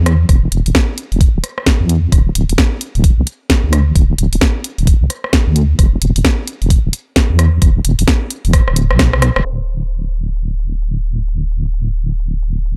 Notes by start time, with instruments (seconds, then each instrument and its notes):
Already playing: wobble bass E2
0.06 cross-stick, closed hi-hat
0.29 wobble bass E1, kick, cross-stick, closed hi-hat
0.52 wobble bass E1, closed hi-hat
0.66 wobble bass E1, closed hi-hat
0.75 kick, snare, closed hi-hat
0.98 closed hi-hat
1.12 wobble bass E1, closed hi-hat
1.21 kick, closed hi-hat
1.35 wobble bass D1
1.44 cross-stick, closed hi-hat
1.58 cross-stick
1.66 kick, snare, closed hi-hat
1.81 wobble bass E2
1.89 closed hi-hat
2.12 wobble bass D1, kick, cross-stick, closed hi-hat
2.35 wobble bass D1, closed hi-hat
2.49 wobble bass D1, closed hi-hat
2.58 kick, snare, closed hi-hat
2.81 closed hi-hat
2.95 wobble bass D1, closed hi-hat
3.04 kick, closed hi-hat
3.18 wobble bass C2
3.27 closed hi-hat
3.50 kick, snare, closed hi-hat
3.64 wobble bass D2
3.73 cross-stick, closed hi-hat
3.96 wobble bass D1, kick, closed hi-hat
4.18 wobble bass D1, closed hi-hat
4.33 wobble bass D1, closed hi-hat
4.41 kick, snare, closed hi-hat
4.64 closed hi-hat
4.78 wobble bass D1, closed hi-hat
4.87 kick, closed hi-hat
5.01 wobble bass C2
5.10 cross-stick, closed hi-hat
5.24 cross-stick
5.33 kick, snare, closed hi-hat
5.47 wobble bass D2
5.56 closed hi-hat
5.79 wobble bass E1, kick, cross-stick, closed hi-hat
6.02 wobble bass E1, closed hi-hat
6.16 wobble bass E1, closed hi-hat
6.25 kick, snare, closed hi-hat
6.47 closed hi-hat
6.62 wobble bass E1, closed hi-hat
6.70 kick, closed hi-hat
6.85 wobble bass D1
6.93 closed hi-hat
7.16 kick, snare, closed hi-hat
7.30 wobble bass E2
7.39 cross-stick, closed hi-hat
7.62 wobble bass E1, kick, cross-stick, closed hi-hat
7.85 wobble bass E1, closed hi-hat
7.99 wobble bass E1, closed hi-hat
8.08 kick, snare, closed hi-hat
8.30 closed hi-hat
8.45 wobble bass E1, closed hi-hat
8.53 kick, cross-stick, closed hi-hat
8.67 wobble bass D1, cross-stick
8.76 closed hi-hat
8.91 wobble bass B1, cross-stick
8.99 kick, cross-stick, snare, closed hi-hat
9.13 cross-stick
9.22 cross-stick, closed hi-hat
9.36 wobble bass E1, cross-stick
9.45 wobble bass D1
9.68 shaker
9.82 closed hi-hat, shaker
9.91 closed hi-hat, shaker
10.14 shaker
10.28 closed hi-hat, shaker
10.37 closed hi-hat, shaker
10.59 closed hi-hat, shaker
10.74 shaker
10.82 closed hi-hat, shaker
11.05 shaker
11.19 shaker
11.28 closed hi-hat, shaker
11.42 shaker
11.51 shaker
11.65 closed hi-hat, shaker
11.74 closed hi-hat, shaker
11.97 shaker
12.11 closed hi-hat, shaker
12.20 closed hi-hat, shaker
12.43 closed hi-hat, shaker
12.57 shaker
12.66 closed hi-hat, shaker